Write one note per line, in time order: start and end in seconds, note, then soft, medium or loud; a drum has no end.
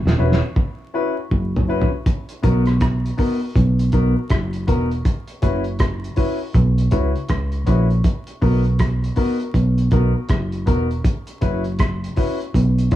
0.05 0.18 E1 medium
0.05 snare medium
0.19 0.40 E1 medium
0.19 0.38 C#4 medium
0.19 0.38 E4 medium
0.19 0.39 F#4 medium
0.19 0.39 B4 medium
0.32 snare medium
0.56 kick loud
0.94 1.13 C#4 medium
0.94 1.13 E4 medium
0.94 1.13 F#4 medium
0.94 1.14 B4 loud
1.31 1.85 F#1 medium
1.31 kick loud
1.56 floor tom medium
1.68 1.88 C#4 medium
1.68 1.88 E4 medium
1.68 1.88 F#4 medium
1.68 1.88 B4 loud
1.81 floor tom medium
2.06 kick loud
2.06 closed hi-hat medium
2.29 closed hi-hat medium
2.43 3.10 B1 medium
2.43 2.62 B3 medium
2.43 2.63 D#4 medium
2.43 2.63 F#4 medium
2.43 2.63 A#4 loud
2.43 kick medium
2.43 closed hi-hat medium
2.66 cross-stick medium
2.66 closed hi-hat soft
2.81 kick loud
2.81 cross-stick loud
2.81 closed hi-hat medium
3.06 closed hi-hat soft
3.17 3.37 B3 medium
3.17 3.37 D#4 medium
3.17 3.38 F#4 medium
3.17 3.38 A#4 medium
3.17 kick medium
3.17 open hi-hat medium
3.41 3.47 F#4 soft
3.41 3.47 A#4 soft
3.55 3.89 B1 loud
3.55 kick loud
3.55 closed hi-hat medium
3.79 closed hi-hat medium
3.92 4.14 B1 medium
3.92 4.12 B3 medium
3.92 4.12 D#4 medium
3.92 4.13 F#4 medium
3.92 4.13 A#4 loud
3.92 kick medium
3.92 closed hi-hat medium
4.16 4.22 F#4 soft
4.16 4.22 A#4 soft
4.30 4.69 F#1 medium
4.30 kick loud
4.30 cross-stick loud
4.30 closed hi-hat medium
4.53 closed hi-hat soft
4.67 5.01 E1 medium
4.67 4.87 B3 medium
4.67 4.87 D#4 medium
4.67 4.87 F#4 medium
4.67 4.88 A#4 loud
4.67 kick medium
4.67 closed hi-hat medium
4.91 closed hi-hat soft
5.05 kick loud
5.05 closed hi-hat medium
5.27 closed hi-hat soft
5.42 6.09 F#1 loud
5.42 5.62 C#4 medium
5.42 5.62 E4 medium
5.42 5.62 F#4 medium
5.42 5.62 B4 loud
5.42 kick medium
5.42 closed hi-hat medium
5.64 closed hi-hat soft
5.79 kick loud
5.79 cross-stick loud
5.79 closed hi-hat medium
6.04 closed hi-hat soft
6.16 6.36 C#4 medium
6.16 6.36 E4 medium
6.16 6.37 F#4 medium
6.16 6.37 B4 loud
6.16 kick medium
6.16 open hi-hat medium
6.54 6.88 B1 loud
6.54 kick loud
6.54 closed hi-hat medium
6.78 closed hi-hat medium
6.91 7.13 C#2 medium
6.91 7.11 C#4 medium
6.91 7.11 E4 medium
6.91 7.11 F#4 medium
6.91 7.12 B4 medium
6.91 kick medium
6.91 closed hi-hat medium
7.16 closed hi-hat soft
7.28 7.63 C#2 medium
7.28 kick loud
7.28 cross-stick loud
7.28 closed hi-hat medium
7.52 closed hi-hat soft
7.66 8.01 A#1 medium
7.66 7.86 C#4 medium
7.66 7.86 E4 medium
7.66 7.86 F#4 medium
7.66 7.87 B4 loud
7.66 kick loud
7.66 closed hi-hat medium
7.91 closed hi-hat soft
8.04 kick loud
8.04 closed hi-hat medium
8.27 closed hi-hat soft
8.41 9.09 B1 loud
8.41 8.61 B3 medium
8.41 8.61 D#4 medium
8.41 8.62 F#4 medium
8.41 8.62 A#4 loud
8.41 kick medium
8.41 open hi-hat soft
8.64 closed hi-hat soft
8.79 kick loud
8.79 cross-stick loud
8.79 closed hi-hat medium
9.04 closed hi-hat medium
9.16 9.36 B3 medium
9.16 9.36 D#4 medium
9.16 9.36 F#4 medium
9.16 9.37 A#4 medium
9.16 kick medium
9.16 open hi-hat medium
9.40 9.46 F#4 soft
9.40 9.46 A#4 soft
9.40 closed hi-hat soft
9.54 9.88 B1 medium
9.54 kick loud
9.54 closed hi-hat medium
9.78 closed hi-hat medium
9.91 10.13 B1 medium
9.91 10.11 B3 medium
9.91 10.11 D#4 medium
9.91 10.12 F#4 medium
9.91 10.12 A#4 loud
9.91 kick medium
9.91 closed hi-hat medium
10.15 10.21 F#4 soft
10.15 10.21 A#4 soft
10.29 10.68 F#1 medium
10.29 kick loud
10.29 cross-stick loud
10.29 closed hi-hat medium
10.52 closed hi-hat soft
10.66 11.00 E1 medium
10.66 10.86 B3 medium
10.66 10.86 D#4 medium
10.66 10.86 F#4 medium
10.66 10.87 A#4 loud
10.66 kick medium
10.66 closed hi-hat medium
10.91 closed hi-hat soft
11.04 kick loud
11.04 closed hi-hat medium
11.27 closed hi-hat medium
11.41 12.09 F#1 loud
11.41 11.61 C#4 medium
11.41 11.61 E4 medium
11.41 11.61 F#4 medium
11.41 11.61 B4 loud
11.41 kick medium
11.41 closed hi-hat medium
11.64 closed hi-hat soft
11.79 kick loud
11.79 cross-stick loud
11.79 closed hi-hat medium
12.04 closed hi-hat medium
12.16 12.36 C#4 medium
12.16 12.36 E4 medium
12.16 12.36 F#4 medium
12.16 12.37 B4 medium
12.16 kick medium
12.16 open hi-hat medium
12.40 closed hi-hat soft
12.54 12.88 B1 medium
12.54 kick loud
12.54 closed hi-hat medium
12.78 closed hi-hat medium
12.91 12.96 C#2 medium
12.91 12.96 C#4 medium
12.91 12.96 E4 medium
12.91 12.96 F#4 medium
12.91 kick medium
12.91 closed hi-hat medium